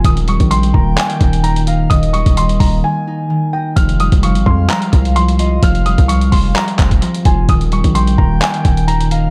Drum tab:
HH |xxxxxx--xxxxxxx-|xxxxxxo---------|xxxxxx--xxxxxxx-|xxxxxxo-xxxxxxx-|
CP |--------x-------|----------------|--------x-------|--------x-x-----|
BD |o--o--o---o-----|o--o--o---------|o--o--o---o-----|o--o--o---oo--o-|

HH |xxxxxx--xxxxxxx-|
CP |--------x-------|
BD |o--o--o---o-----|